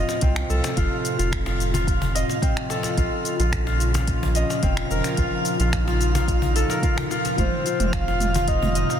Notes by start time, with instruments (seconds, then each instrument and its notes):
Already playing: analog synth pad A2 C3 F3 C4 F4, harp F4 D#5, synth texture F5
0.09 cajon slap, cabasa
0.21 analog synth bass C2, harp C4, kick, closed hi-hat, cabasa
0.36 finger snap, cajon slap, closed hi-hat
0.50 analog synth bass C2, harp A4, cabasa
0.64 cajon slap, closed hi-hat, cabasa
0.77 analog synth bass F1, harp F4, kick, closed hi-hat, cabasa
1.05 closed hi-hat, cabasa
1.19 analog synth bass F1, harp F4, closed hi-hat, cabasa
1.32 finger snap, kick, closed hi-hat, cabasa
1.46 harp F4, cajon slap
1.60 closed hi-hat, cabasa
1.73 harp F4, cajon bass, closed hi-hat, cabasa
1.87 kick, closed hi-hat, cabasa
2.02 cajon bass
2.15 harp D#5, closed hi-hat, cabasa
2.29 cajon slap, cabasa
2.42 harp C4, kick, closed hi-hat, cabasa
2.57 finger snap, closed hi-hat
2.70 harp A4, cajon slap, cabasa
2.83 cajon slap, closed hi-hat, cabasa
2.97 analog synth bass A#1, analog synth pad A#2 C#3 C#4, harp F4, kick, closed hi-hat, cabasa
3.25 closed hi-hat, cabasa
3.39 analog synth bass A#1, harp F4, closed hi-hat, cabasa
3.53 finger snap, kick, closed hi-hat, cabasa
3.67 harp F4, cajon slap
3.80 closed hi-hat, cabasa
3.94 harp F4, cajon bass, closed hi-hat, cabasa
4.08 kick, closed hi-hat, cabasa
4.23 cajon bass
4.35 harp D#5, closed hi-hat, cabasa
4.50 cajon slap, cabasa
4.63 analog synth bass F1, harp C4, kick, closed hi-hat, cabasa
4.77 finger snap, cajon slap, closed hi-hat
4.90 analog synth bass F1, harp A#4, cabasa
5.04 cajon slap, closed hi-hat, cabasa
5.17 analog synth bass A#1, analog synth pad D#4, harp F4, kick, closed hi-hat, cabasa
5.45 closed hi-hat, cabasa
5.60 analog synth bass A#1, harp F4, closed hi-hat, cabasa
5.73 finger snap, kick, closed hi-hat, cabasa
5.88 harp F4, cajon slap
6.01 closed hi-hat, cabasa
6.15 harp F4, cajon bass, closed hi-hat, cabasa
6.28 kick, closed hi-hat, cabasa
6.42 cajon bass
6.56 harp A4, closed hi-hat, cabasa
6.70 harp A#4, cajon slap, cabasa
6.83 harp F4, kick, closed hi-hat, cabasa
6.98 finger snap, cajon bass, closed hi-hat
7.11 harp F4, cajon slap, cabasa
7.25 cajon slap, closed hi-hat, cabasa
7.38 analog synth bass F1, analog synth pad A2 C3 C4, harp F4, soft synth lead C5, kick, closed hi-hat, mid tom, cabasa
7.66 harp F4, closed hi-hat, cabasa
7.80 analog synth bass F1, closed hi-hat, mid tom, cabasa
7.93 soft synth lead F5, finger snap, kick, closed hi-hat, cabasa
8.08 harp F4, cajon slap
8.20 closed hi-hat, mid tom, cabasa
8.34 harp F4, cajon bass, closed hi-hat, cabasa
8.48 soft synth lead D#5, kick, closed hi-hat, cabasa
8.62 cajon bass, mid tom
8.75 harp D#5, closed hi-hat, cabasa
8.90 cajon slap, cabasa